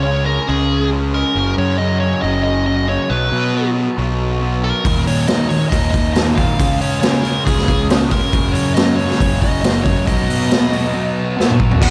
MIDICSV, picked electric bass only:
0, 0, Header, 1, 2, 480
1, 0, Start_track
1, 0, Tempo, 436047
1, 1494, Time_signature, 4, 2, 24, 8
1, 13103, End_track
2, 0, Start_track
2, 0, Title_t, "Picked electric bass"
2, 0, Program_c, 0, 34
2, 0, Note_on_c, 0, 37, 82
2, 422, Note_off_c, 0, 37, 0
2, 537, Note_on_c, 0, 37, 86
2, 1348, Note_off_c, 0, 37, 0
2, 1489, Note_on_c, 0, 30, 80
2, 1694, Note_off_c, 0, 30, 0
2, 1738, Note_on_c, 0, 42, 88
2, 2347, Note_off_c, 0, 42, 0
2, 2453, Note_on_c, 0, 30, 88
2, 3267, Note_off_c, 0, 30, 0
2, 3413, Note_on_c, 0, 35, 88
2, 3618, Note_off_c, 0, 35, 0
2, 3652, Note_on_c, 0, 47, 83
2, 4264, Note_off_c, 0, 47, 0
2, 4381, Note_on_c, 0, 35, 88
2, 5192, Note_off_c, 0, 35, 0
2, 5336, Note_on_c, 0, 39, 81
2, 5540, Note_off_c, 0, 39, 0
2, 5573, Note_on_c, 0, 51, 83
2, 6184, Note_off_c, 0, 51, 0
2, 6296, Note_on_c, 0, 39, 81
2, 7109, Note_off_c, 0, 39, 0
2, 7258, Note_on_c, 0, 37, 83
2, 7461, Note_off_c, 0, 37, 0
2, 7494, Note_on_c, 0, 49, 81
2, 8104, Note_off_c, 0, 49, 0
2, 8218, Note_on_c, 0, 37, 90
2, 9029, Note_off_c, 0, 37, 0
2, 9171, Note_on_c, 0, 30, 80
2, 9376, Note_off_c, 0, 30, 0
2, 9399, Note_on_c, 0, 42, 95
2, 10015, Note_off_c, 0, 42, 0
2, 10129, Note_on_c, 0, 30, 91
2, 10943, Note_off_c, 0, 30, 0
2, 11091, Note_on_c, 0, 35, 89
2, 11295, Note_off_c, 0, 35, 0
2, 11321, Note_on_c, 0, 47, 83
2, 11935, Note_off_c, 0, 47, 0
2, 13012, Note_on_c, 0, 39, 94
2, 13103, Note_off_c, 0, 39, 0
2, 13103, End_track
0, 0, End_of_file